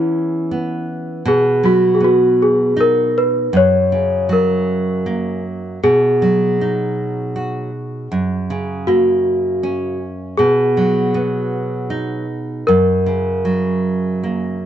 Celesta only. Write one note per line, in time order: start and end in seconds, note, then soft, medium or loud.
0.00 0.84 E4 medium
1.28 1.66 G#4 medium
1.65 1.96 F#4 medium
1.95 2.01 G#4 medium
2.04 2.41 F#4 medium
2.42 2.80 G#4 medium
2.81 3.18 A#4 medium
3.18 3.55 B4 medium
3.57 4.27 C#5 medium
4.33 5.42 A#4 medium
5.84 8.96 G#4 medium
8.87 9.96 F#4 medium
10.38 12.73 G#4 medium
12.67 14.18 A#4 medium